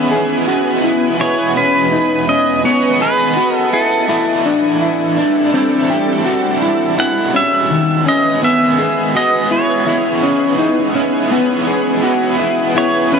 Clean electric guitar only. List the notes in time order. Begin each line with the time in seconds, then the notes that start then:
Already playing: B3
0.11 G#4
0.47 F#4
0.84 E4
1.20 E4
1.56 C#4
1.92 D#4
2.28 C#4
2.64 B3
3.01 G#4
3.37 F#4
3.73 E4
4.09 E4
4.45 D4
4.81 E4
5.17 D4
5.54 C4
5.90 G4
6.26 F#4
6.62 E4
6.98 E4
7.34 C#4
7.70 D#3
8.06 C#4
8.43 B3
8.79 G#4
9.15 F#4
9.51 E4
9.87 E4
10.23 C#4
10.58 D#4
10.95 C#4
11.31 B3
11.67 G#4
12.03 F#4
12.39 E4
12.76 E4
13.12 C#4